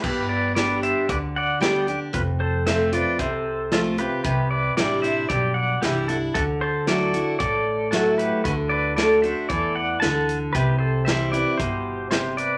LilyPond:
<<
  \new Staff \with { instrumentName = "Pedal steel guitar" } { \time 4/4 \key g \major \tempo 4 = 114 <g' b'>8 <b' d''>8 <b' d''>8 <c'' e''>8 <b' d''>8 <d'' fis''>8 <d'' g''>8. r16 | <f' b'>8 <a' c''>8 <c'' e''>8 <b' d''>8 <a' c''>4 <f' a'>8 <g' b'>8 | <g' b'>8 <b' d''>8 <g' d''>8 <c'' e''>8 <g' d''>8 <d'' fis''>8 <e' g'>8 <fis' a'>8 | <fis' a'>8 <a' c''>8 <a' d''>4 <a' d''>4 <fis' a'>8 <g' b'>8 |
<fis' b'>8 <b' d''>8 <a' d''>8 <c'' e''>8 <a' d''>8 <d'' fis''>8 <fis'' a''>8. r16 | <g' b'>8 <a' c''>8 <c'' e''>8 <b' d''>8 <g' c''>4 <g' c''>8 <b' d''>8 | }
  \new Staff \with { instrumentName = "Steel-string acoustic guitar" } { \time 4/4 \key g \major << { r4 <g b d' g'>4 r4 <g b d' g'>8 <d' g'>8 | r4 <f a c' f'>8 <c' f'>8 r4 <f a c' f'>8 <c' f'>8 | r4 <e g d' e'>8 <d' e'>8 r4 <e g d' e'>8 <d' e'>8 | r4 <fis a e' fis'>8 <e' fis'>8 r4 <fis a e' fis'>4 |
r4 <d a d' fis'>8 <d' fis'>8 r2 | r4 <e g c' e'>8 <c' e'>8 r2 | } \\ { g,2 d2 | f,2 c2 | c2 g,2 | d2 a,2 |
d2 e4 d4 | c2 b,4 c4 | } >> }
  \new Staff \with { instrumentName = "Upright bass" } { \clef bass \time 4/4 \key g \major g,,2 d,2 | f,,2 c,2 | c,4 a,,4 b,,4 c,4 | d,2 a,,2 |
d,2 e,4 d,4 | c,2 g,,2 | }
  \new DrumStaff \with { instrumentName = "Drums" } \drummode { \time 4/4 <cymc bd>4 <hh sn>8 hh8 <hh bd>4 <hh sn>8 hh8 | <hh bd>4 <hh sn>8 hh8 <hh bd>4 <hh sn>8 hh8 | <hh bd>4 <hh sn>8 hh8 <hh bd>4 <hh sn>8 hh8 | <hh bd>4 <hh sn>8 hh8 <hh bd>4 <hh sn>8 hh8 |
<hh bd>4 <hh sn>8 hh8 <hh bd>4 <hh sn>8 hh8 | <hh bd>4 <hh sn>8 hh8 <hh bd>4 <hh sn>8 hh8 | }
>>